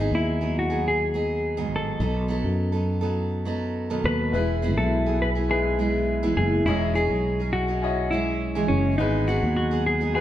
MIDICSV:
0, 0, Header, 1, 5, 480
1, 0, Start_track
1, 0, Key_signature, 4, "major"
1, 0, Tempo, 581395
1, 1664, Time_signature, 4, 2, 24, 8
1, 8427, End_track
2, 0, Start_track
2, 0, Title_t, "Clean electric guitar"
2, 0, Program_c, 0, 27
2, 0, Note_on_c, 0, 63, 77
2, 87, Note_off_c, 0, 63, 0
2, 123, Note_on_c, 0, 64, 84
2, 483, Note_off_c, 0, 64, 0
2, 486, Note_on_c, 0, 66, 80
2, 722, Note_off_c, 0, 66, 0
2, 725, Note_on_c, 0, 68, 85
2, 1448, Note_off_c, 0, 68, 0
2, 1451, Note_on_c, 0, 69, 85
2, 2364, Note_off_c, 0, 69, 0
2, 3348, Note_on_c, 0, 71, 89
2, 3939, Note_off_c, 0, 71, 0
2, 3943, Note_on_c, 0, 69, 92
2, 4305, Note_off_c, 0, 69, 0
2, 4309, Note_on_c, 0, 71, 88
2, 4373, Note_off_c, 0, 71, 0
2, 4547, Note_on_c, 0, 68, 92
2, 5232, Note_off_c, 0, 68, 0
2, 5260, Note_on_c, 0, 68, 83
2, 5495, Note_off_c, 0, 68, 0
2, 5498, Note_on_c, 0, 64, 94
2, 5738, Note_off_c, 0, 64, 0
2, 5741, Note_on_c, 0, 68, 86
2, 6212, Note_off_c, 0, 68, 0
2, 6215, Note_on_c, 0, 66, 93
2, 6693, Note_on_c, 0, 64, 91
2, 6713, Note_off_c, 0, 66, 0
2, 7144, Note_off_c, 0, 64, 0
2, 7169, Note_on_c, 0, 61, 77
2, 7410, Note_off_c, 0, 61, 0
2, 7414, Note_on_c, 0, 63, 90
2, 7660, Note_on_c, 0, 66, 78
2, 7665, Note_off_c, 0, 63, 0
2, 7888, Note_off_c, 0, 66, 0
2, 7897, Note_on_c, 0, 66, 86
2, 8141, Note_off_c, 0, 66, 0
2, 8144, Note_on_c, 0, 68, 86
2, 8370, Note_off_c, 0, 68, 0
2, 8379, Note_on_c, 0, 68, 86
2, 8427, Note_off_c, 0, 68, 0
2, 8427, End_track
3, 0, Start_track
3, 0, Title_t, "Upright piano"
3, 0, Program_c, 1, 0
3, 3568, Note_on_c, 1, 59, 66
3, 3575, Note_on_c, 1, 64, 64
3, 3584, Note_on_c, 1, 71, 72
3, 3727, Control_c, 1, 64, 127
3, 4356, Note_off_c, 1, 59, 0
3, 4360, Note_off_c, 1, 64, 0
3, 4364, Note_off_c, 1, 71, 0
3, 4532, Note_on_c, 1, 56, 72
3, 4540, Note_on_c, 1, 64, 61
3, 4548, Note_on_c, 1, 71, 71
3, 5318, Note_off_c, 1, 56, 0
3, 5322, Note_off_c, 1, 64, 0
3, 5326, Note_off_c, 1, 71, 0
3, 5500, Note_on_c, 1, 61, 71
3, 5505, Note_on_c, 1, 64, 67
3, 5512, Control_c, 1, 64, 0
3, 5516, Note_on_c, 1, 75, 77
3, 5658, Control_c, 1, 64, 127
3, 6282, Note_off_c, 1, 61, 0
3, 6284, Note_off_c, 1, 64, 0
3, 6290, Note_off_c, 1, 75, 0
3, 6454, Note_on_c, 1, 61, 71
3, 6464, Note_on_c, 1, 64, 64
3, 6471, Note_on_c, 1, 75, 76
3, 7239, Note_off_c, 1, 61, 0
3, 7244, Note_off_c, 1, 64, 0
3, 7248, Note_off_c, 1, 75, 0
3, 7415, Note_on_c, 1, 56, 71
3, 7420, Note_on_c, 1, 66, 65
3, 7430, Note_on_c, 1, 71, 77
3, 7434, Control_c, 1, 64, 0
3, 7566, Control_c, 1, 64, 127
3, 8200, Note_off_c, 1, 56, 0
3, 8202, Note_off_c, 1, 66, 0
3, 8207, Note_off_c, 1, 71, 0
3, 8370, Note_on_c, 1, 56, 74
3, 8379, Note_on_c, 1, 66, 61
3, 8386, Note_on_c, 1, 71, 76
3, 8427, Note_off_c, 1, 56, 0
3, 8427, Note_off_c, 1, 66, 0
3, 8427, Note_off_c, 1, 71, 0
3, 8427, End_track
4, 0, Start_track
4, 0, Title_t, "Steel-string acoustic guitar"
4, 0, Program_c, 2, 25
4, 0, Note_on_c, 2, 54, 56
4, 0, Note_on_c, 2, 59, 61
4, 0, Note_on_c, 2, 63, 65
4, 5, Note_on_c, 2, 68, 65
4, 328, Note_off_c, 2, 68, 0
4, 334, Note_off_c, 2, 63, 0
4, 338, Note_on_c, 2, 68, 44
4, 341, Note_off_c, 2, 59, 0
4, 344, Note_off_c, 2, 54, 0
4, 344, Note_on_c, 2, 63, 43
4, 351, Note_on_c, 2, 59, 42
4, 356, Note_on_c, 2, 54, 40
4, 567, Note_off_c, 2, 68, 0
4, 572, Note_off_c, 2, 63, 0
4, 577, Note_on_c, 2, 68, 51
4, 579, Note_off_c, 2, 59, 0
4, 582, Note_off_c, 2, 54, 0
4, 582, Note_on_c, 2, 63, 48
4, 589, Note_on_c, 2, 59, 47
4, 592, Note_on_c, 2, 54, 41
4, 931, Note_off_c, 2, 54, 0
4, 937, Note_off_c, 2, 59, 0
4, 941, Note_off_c, 2, 63, 0
4, 941, Note_off_c, 2, 68, 0
4, 941, Note_on_c, 2, 54, 53
4, 947, Note_on_c, 2, 59, 50
4, 951, Note_on_c, 2, 63, 53
4, 955, Note_on_c, 2, 68, 56
4, 1287, Note_off_c, 2, 68, 0
4, 1289, Note_off_c, 2, 59, 0
4, 1289, Note_off_c, 2, 63, 0
4, 1294, Note_off_c, 2, 54, 0
4, 1297, Note_on_c, 2, 68, 61
4, 1299, Note_on_c, 2, 59, 58
4, 1299, Note_on_c, 2, 63, 65
4, 1304, Note_on_c, 2, 51, 52
4, 1304, Note_on_c, 2, 54, 59
4, 1308, Note_on_c, 2, 44, 53
4, 1641, Note_off_c, 2, 54, 0
4, 1647, Note_off_c, 2, 59, 0
4, 1651, Note_on_c, 2, 54, 51
4, 1653, Note_off_c, 2, 63, 0
4, 1657, Note_on_c, 2, 59, 56
4, 1660, Note_off_c, 2, 68, 0
4, 1663, Note_on_c, 2, 63, 55
4, 1664, Note_off_c, 2, 51, 0
4, 1665, Note_on_c, 2, 69, 65
4, 1666, Note_off_c, 2, 44, 0
4, 1875, Note_off_c, 2, 54, 0
4, 1881, Note_off_c, 2, 59, 0
4, 1885, Note_on_c, 2, 54, 57
4, 1891, Note_off_c, 2, 63, 0
4, 1891, Note_on_c, 2, 59, 56
4, 1895, Note_off_c, 2, 69, 0
4, 1901, Note_on_c, 2, 63, 60
4, 1905, Note_on_c, 2, 69, 58
4, 2237, Note_off_c, 2, 69, 0
4, 2243, Note_off_c, 2, 63, 0
4, 2247, Note_on_c, 2, 69, 48
4, 2248, Note_off_c, 2, 59, 0
4, 2253, Note_on_c, 2, 63, 49
4, 2254, Note_off_c, 2, 54, 0
4, 2258, Note_on_c, 2, 59, 44
4, 2265, Note_on_c, 2, 54, 46
4, 2474, Note_off_c, 2, 69, 0
4, 2483, Note_off_c, 2, 63, 0
4, 2484, Note_on_c, 2, 69, 59
4, 2489, Note_off_c, 2, 59, 0
4, 2493, Note_on_c, 2, 63, 54
4, 2495, Note_off_c, 2, 54, 0
4, 2499, Note_on_c, 2, 59, 51
4, 2504, Note_on_c, 2, 54, 50
4, 2842, Note_off_c, 2, 54, 0
4, 2849, Note_off_c, 2, 59, 0
4, 2852, Note_on_c, 2, 54, 61
4, 2854, Note_off_c, 2, 69, 0
4, 2858, Note_off_c, 2, 63, 0
4, 2859, Note_on_c, 2, 59, 59
4, 2867, Note_on_c, 2, 63, 56
4, 2872, Note_on_c, 2, 69, 70
4, 3210, Note_off_c, 2, 69, 0
4, 3214, Note_off_c, 2, 59, 0
4, 3215, Note_off_c, 2, 63, 0
4, 3217, Note_off_c, 2, 54, 0
4, 3220, Note_on_c, 2, 69, 64
4, 3224, Note_on_c, 2, 59, 64
4, 3225, Note_on_c, 2, 63, 61
4, 3227, Note_on_c, 2, 51, 59
4, 3227, Note_on_c, 2, 54, 60
4, 3231, Note_on_c, 2, 47, 54
4, 3575, Note_off_c, 2, 54, 0
4, 3576, Note_off_c, 2, 59, 0
4, 3578, Note_on_c, 2, 56, 47
4, 3581, Note_off_c, 2, 69, 0
4, 3584, Note_off_c, 2, 63, 0
4, 3585, Note_off_c, 2, 51, 0
4, 3585, Note_on_c, 2, 59, 50
4, 3587, Note_off_c, 2, 47, 0
4, 3589, Note_on_c, 2, 64, 52
4, 3594, Note_on_c, 2, 68, 56
4, 3806, Note_off_c, 2, 56, 0
4, 3814, Note_off_c, 2, 59, 0
4, 3816, Note_on_c, 2, 56, 50
4, 3821, Note_off_c, 2, 64, 0
4, 3824, Note_off_c, 2, 68, 0
4, 3824, Note_on_c, 2, 59, 56
4, 3831, Note_on_c, 2, 64, 66
4, 3834, Note_on_c, 2, 68, 65
4, 4169, Note_off_c, 2, 68, 0
4, 4179, Note_off_c, 2, 56, 0
4, 4179, Note_on_c, 2, 68, 49
4, 4181, Note_off_c, 2, 64, 0
4, 4183, Note_off_c, 2, 59, 0
4, 4191, Note_on_c, 2, 64, 39
4, 4197, Note_on_c, 2, 59, 41
4, 4409, Note_off_c, 2, 68, 0
4, 4417, Note_off_c, 2, 64, 0
4, 4419, Note_on_c, 2, 68, 50
4, 4426, Note_off_c, 2, 59, 0
4, 4427, Note_on_c, 2, 64, 48
4, 4436, Note_on_c, 2, 59, 41
4, 4773, Note_off_c, 2, 59, 0
4, 4777, Note_off_c, 2, 64, 0
4, 4778, Note_on_c, 2, 56, 54
4, 4781, Note_off_c, 2, 68, 0
4, 4783, Note_on_c, 2, 59, 57
4, 4787, Note_on_c, 2, 64, 59
4, 4794, Note_on_c, 2, 68, 59
4, 5132, Note_off_c, 2, 68, 0
4, 5133, Note_off_c, 2, 64, 0
4, 5136, Note_off_c, 2, 59, 0
4, 5140, Note_off_c, 2, 56, 0
4, 5142, Note_on_c, 2, 68, 66
4, 5143, Note_on_c, 2, 64, 63
4, 5146, Note_on_c, 2, 59, 65
4, 5153, Note_on_c, 2, 56, 61
4, 5156, Note_on_c, 2, 52, 58
4, 5493, Note_off_c, 2, 56, 0
4, 5502, Note_off_c, 2, 68, 0
4, 5502, Note_on_c, 2, 56, 56
4, 5503, Note_off_c, 2, 64, 0
4, 5504, Note_off_c, 2, 59, 0
4, 5509, Note_off_c, 2, 52, 0
4, 5509, Note_on_c, 2, 61, 54
4, 5512, Note_on_c, 2, 63, 62
4, 5519, Note_on_c, 2, 68, 58
4, 5729, Note_off_c, 2, 56, 0
4, 5735, Note_off_c, 2, 61, 0
4, 5739, Note_on_c, 2, 56, 60
4, 5742, Note_off_c, 2, 63, 0
4, 5745, Note_on_c, 2, 61, 63
4, 5748, Note_off_c, 2, 68, 0
4, 5752, Note_on_c, 2, 63, 61
4, 5758, Note_on_c, 2, 68, 66
4, 6096, Note_off_c, 2, 68, 0
4, 6100, Note_off_c, 2, 56, 0
4, 6103, Note_off_c, 2, 61, 0
4, 6104, Note_off_c, 2, 63, 0
4, 6106, Note_on_c, 2, 68, 44
4, 6114, Note_on_c, 2, 63, 45
4, 6122, Note_on_c, 2, 61, 43
4, 6332, Note_off_c, 2, 68, 0
4, 6341, Note_off_c, 2, 63, 0
4, 6341, Note_on_c, 2, 68, 49
4, 6351, Note_on_c, 2, 63, 46
4, 6352, Note_off_c, 2, 61, 0
4, 6362, Note_on_c, 2, 61, 42
4, 6702, Note_off_c, 2, 68, 0
4, 6703, Note_off_c, 2, 61, 0
4, 6706, Note_on_c, 2, 56, 56
4, 6707, Note_off_c, 2, 63, 0
4, 6713, Note_on_c, 2, 61, 58
4, 6724, Note_on_c, 2, 68, 62
4, 7051, Note_off_c, 2, 68, 0
4, 7056, Note_off_c, 2, 61, 0
4, 7061, Note_off_c, 2, 56, 0
4, 7061, Note_on_c, 2, 68, 62
4, 7066, Note_on_c, 2, 61, 64
4, 7067, Note_on_c, 2, 63, 63
4, 7071, Note_on_c, 2, 56, 61
4, 7076, Note_on_c, 2, 52, 59
4, 7412, Note_off_c, 2, 56, 0
4, 7416, Note_on_c, 2, 54, 56
4, 7419, Note_off_c, 2, 61, 0
4, 7419, Note_off_c, 2, 63, 0
4, 7421, Note_off_c, 2, 68, 0
4, 7422, Note_on_c, 2, 59, 62
4, 7429, Note_off_c, 2, 52, 0
4, 7429, Note_on_c, 2, 63, 57
4, 7434, Note_on_c, 2, 68, 63
4, 7647, Note_off_c, 2, 54, 0
4, 7654, Note_off_c, 2, 59, 0
4, 7656, Note_on_c, 2, 54, 56
4, 7660, Note_off_c, 2, 63, 0
4, 7664, Note_on_c, 2, 59, 65
4, 7665, Note_off_c, 2, 68, 0
4, 7670, Note_on_c, 2, 63, 63
4, 7675, Note_on_c, 2, 68, 64
4, 8007, Note_off_c, 2, 68, 0
4, 8013, Note_off_c, 2, 63, 0
4, 8017, Note_on_c, 2, 68, 51
4, 8019, Note_off_c, 2, 54, 0
4, 8019, Note_off_c, 2, 59, 0
4, 8023, Note_on_c, 2, 63, 47
4, 8029, Note_on_c, 2, 59, 47
4, 8036, Note_on_c, 2, 54, 39
4, 8252, Note_off_c, 2, 68, 0
4, 8257, Note_off_c, 2, 63, 0
4, 8262, Note_on_c, 2, 68, 51
4, 8263, Note_off_c, 2, 59, 0
4, 8267, Note_on_c, 2, 63, 51
4, 8269, Note_off_c, 2, 54, 0
4, 8273, Note_on_c, 2, 59, 45
4, 8278, Note_on_c, 2, 54, 41
4, 8427, Note_off_c, 2, 54, 0
4, 8427, Note_off_c, 2, 59, 0
4, 8427, Note_off_c, 2, 63, 0
4, 8427, Note_off_c, 2, 68, 0
4, 8427, End_track
5, 0, Start_track
5, 0, Title_t, "Fretless electric bass"
5, 0, Program_c, 3, 35
5, 95, Note_on_c, 3, 39, 83
5, 1417, Note_off_c, 3, 39, 0
5, 1417, Note_on_c, 3, 33, 80
5, 1641, Note_off_c, 3, 33, 0
5, 1652, Note_on_c, 3, 35, 89
5, 1989, Note_off_c, 3, 35, 0
5, 2015, Note_on_c, 3, 42, 71
5, 3306, Note_off_c, 3, 42, 0
5, 3336, Note_on_c, 3, 39, 84
5, 3560, Note_off_c, 3, 39, 0
5, 3580, Note_on_c, 3, 28, 84
5, 3942, Note_off_c, 3, 28, 0
5, 3942, Note_on_c, 3, 35, 80
5, 5229, Note_off_c, 3, 35, 0
5, 5258, Note_on_c, 3, 30, 85
5, 5481, Note_off_c, 3, 30, 0
5, 5494, Note_on_c, 3, 28, 104
5, 5829, Note_off_c, 3, 28, 0
5, 5860, Note_on_c, 3, 35, 72
5, 7148, Note_off_c, 3, 35, 0
5, 7181, Note_on_c, 3, 30, 87
5, 7417, Note_off_c, 3, 30, 0
5, 7417, Note_on_c, 3, 32, 91
5, 7750, Note_off_c, 3, 32, 0
5, 7785, Note_on_c, 3, 39, 79
5, 8427, Note_off_c, 3, 39, 0
5, 8427, End_track
0, 0, End_of_file